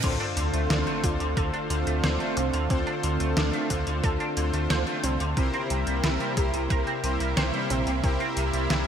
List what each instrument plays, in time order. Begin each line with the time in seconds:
0.04 analog synth bass D2, clean electric guitar D3, analog synth pad D3 A3 C4 F4, synth arpeggio sound C4, analog polysynth D4 F4 A4 C5, kick, closed hi-hat, crash, sub drop
0.20 clean electric guitar D4, closed hi-hat
0.37 analog synth bass D2, clean electric guitar D3, closed hi-hat
0.54 analog synth bass D2, clean electric guitar A3, closed hi-hat
0.70 analog synth bass D2, clean electric guitar D3, synth arpeggio sound D4, snare, closed hi-hat
0.87 clean electric guitar A3, closed hi-hat
1.03 analog synth bass D2, clean electric guitar D3, analog polysynth D4 F4 A4 C5, synth arpeggio sound F4, kick, closed hi-hat
1.20 analog synth bass D2, clean electric guitar D3, closed hi-hat
1.37 analog synth bass D2, clean electric guitar D3, synth arpeggio sound A4, kick, closed hi-hat
1.53 clean electric guitar D4, closed hi-hat
1.70 analog synth bass D2, clean electric guitar D3, analog polysynth D4 F4 A4 C5, closed hi-hat
1.87 analog synth bass D2, clean electric guitar A3, closed hi-hat
2.04 analog synth bass D2, clean electric guitar D3, synth arpeggio sound C5, snare, closed hi-hat
2.20 clean electric guitar A3, analog polysynth D4 F4 A4 C5, closed hi-hat
2.37 analog synth bass C2, clean electric guitar D3, synth arpeggio sound C4, closed hi-hat
2.53 analog synth bass D2, clean electric guitar D3, closed hi-hat
2.70 analog synth bass D2, clean electric guitar D3, synth arpeggio sound C4, analog polysynth D4 F4 A4 C5, kick, closed hi-hat
2.87 clean electric guitar D4, closed hi-hat
3.03 analog synth bass D2, clean electric guitar D3, closed hi-hat
3.20 analog synth bass D2, clean electric guitar A3, closed hi-hat
3.37 analog synth bass D2, clean electric guitar D3, synth arpeggio sound D4, snare, closed hi-hat
3.53 clean electric guitar A3, closed hi-hat
3.70 analog synth bass D2, clean electric guitar D3, analog polysynth D4 F4 A4 C5, synth arpeggio sound F4, kick, closed hi-hat
3.87 analog synth bass D2, clean electric guitar D3, closed hi-hat
4.04 analog synth bass D2, clean electric guitar D3, synth arpeggio sound A4, kick, closed hi-hat
4.20 clean electric guitar D4, closed hi-hat
4.37 analog synth bass D2, clean electric guitar D3, analog polysynth D4 F4 A4 C5, closed hi-hat
4.54 analog synth bass D2, clean electric guitar A3, closed hi-hat
4.70 analog synth bass D2, clean electric guitar D3, synth arpeggio sound C5, snare, closed hi-hat
4.87 clean electric guitar A3, analog polysynth D4 F4 A4 C5, closed hi-hat
5.04 analog synth bass C2, clean electric guitar D3, synth arpeggio sound C4, closed hi-hat
5.20 analog synth bass D2, clean electric guitar D3, closed hi-hat
5.37 analog synth bass C2, analog synth pad C3 G3 A#3 E4, clean electric guitar C3, synth arpeggio sound C4, analog polysynth E4 G4 A#4 C5, kick, closed hi-hat
5.54 clean electric guitar C4, closed hi-hat
5.70 analog synth bass C2, clean electric guitar C3, closed hi-hat
5.87 analog synth bass C2, clean electric guitar G3, closed hi-hat
6.04 analog synth bass C2, clean electric guitar C3, synth arpeggio sound E4, snare, closed hi-hat
6.20 clean electric guitar G3, closed hi-hat
6.37 analog synth bass C2, clean electric guitar C3, analog polysynth E4 G4 A#4 C5, synth arpeggio sound G4, kick, closed hi-hat
6.54 analog synth bass C2, clean electric guitar C3, closed hi-hat
6.70 analog synth bass C2, clean electric guitar C3, synth arpeggio sound A#4, kick, closed hi-hat
6.87 clean electric guitar C4, closed hi-hat
7.04 analog synth bass C2, clean electric guitar C3, analog polysynth E4 G4 A#4 C5, closed hi-hat
7.20 analog synth bass C2, clean electric guitar G3, closed hi-hat
7.37 analog synth bass C2, clean electric guitar C3, synth arpeggio sound C5, snare, closed hi-hat
7.54 clean electric guitar G3, analog polysynth E4 G4 A#4 C5, closed hi-hat
7.70 analog synth bass A#1, clean electric guitar C3, synth arpeggio sound C4, closed hi-hat
7.87 analog synth bass C2, clean electric guitar C3, closed hi-hat
8.04 analog synth bass C2, clean electric guitar C3, synth arpeggio sound C4, analog polysynth E4 G4 A#4 C5, kick, closed hi-hat
8.20 clean electric guitar C4, closed hi-hat
8.37 analog synth bass C2, clean electric guitar C3, closed hi-hat
8.53 analog synth bass C2, clean electric guitar G3, closed hi-hat
8.70 analog synth bass C2, clean electric guitar C3, synth arpeggio sound E4, snare, closed hi-hat